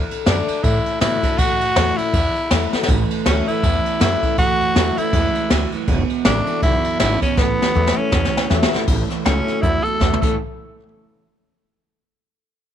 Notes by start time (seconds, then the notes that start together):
Already playing: D3
0.11 muted upright bass stroke, ride
0.26 F#2 D3 A3 D4 F#4, snare, ride
0.47 D4 F#4, muted upright bass stroke, ride
0.63 A2 E4, kick, ride
0.86 muted upright bass stroke, ride
1.01 B2 D3 A3 D4 E4 F#4, snare, ride
1.22 D4 F#4, muted upright bass stroke, kick, snare, ride
1.38 A1 A2 F#4, kick, ride
1.61 F#2, ride
1.76 E2 E3 A3 C#4 E4, snare, ride
1.97 C#4 E4, muted upright bass stroke, ride
2.13 E2, kick, ride
2.35 muted upright bass stroke, ride
2.51 E2 E3 A3 C#4 E4, snare, ride
2.73 C#4 E4, muted upright bass stroke, snare
2.83 snare
2.88 A1 A2 E3, kick, ride
3.11 ride
3.26 D2 A2 E3 F#3 A3 C#4 E4, snare, ride
3.47 A2 E3 C#4 E4, muted upright bass stroke, ride
3.63 E2 A2 E3, kick, ride
3.86 muted upright bass stroke, ride
4.00 F#2 A2 E3 F#3 A3 C#4 E4, snare, ride
4.22 A2 E3 C#4 E4, muted upright bass stroke, kick, ride
4.38 F#2 A2 E3 F#4, kick, ride
4.60 F#2, ride
4.75 E2 A2 E3 F#3 A3 C#4 E4, snare, ride
4.97 A2 E3 C#4 E4, muted upright bass stroke, ride
5.13 E2 A2 E3 G#3, kick, ride
5.35 muted upright bass stroke, ride
5.50 D2 F#2 A2 F#3, snare, ride
5.72 A2 E3, muted upright bass stroke, ride
5.87 E1 E2 B2, kick, ride
6.10 muted upright bass stroke, ride
6.25 A1 E2 C#3 D3 G#3 B3 D4 E4, snare, ride
6.47 E2 B2 B3 E4, muted upright bass stroke, ride
6.62 B1 E2 F#2 B2 E4, kick, ride
6.84 muted upright bass stroke, ride
7.00 G#1 E2 C#3 E4, snare, ride
7.22 E2 B2 C#4, kick, snare, ride
7.37 A1 A2 E3 B3, kick, snare
7.60 F#2, snare
7.74 E2 A2 E3 F#3 A3 C#4 E4
7.87 snare
7.97 A2 E3 C#4 E4, muted upright bass stroke
8.12 E2 A2 E3, kick, snare
8.25 snare
8.35 muted upright bass stroke, snare
8.50 E2 A2 E3 F#3 A3 C#4 E4, snare
8.63 snare
8.72 A2 E3 C#4 E4, muted upright bass stroke, snare
8.87 A1 A2 E3, kick, crash
9.10 A2 E3, snare, closed hi-hat
9.25 C#2 A2 E3 F#3 A3 C#4 E4, snare, closed hi-hat
9.47 A2 F#3 C#4 E4, muted upright bass stroke, snare, closed hi-hat
9.62 E2 A2 F#3 E4, kick, closed hi-hat
9.84 A2 F#3 A4, muted upright bass stroke, closed hi-hat
10.00 E2 A2 E3 A3 C#4 E4, kick, snare
10.13 mid tom
10.21 A1 A2 E3 A3 C#4 E4 A4, kick, crash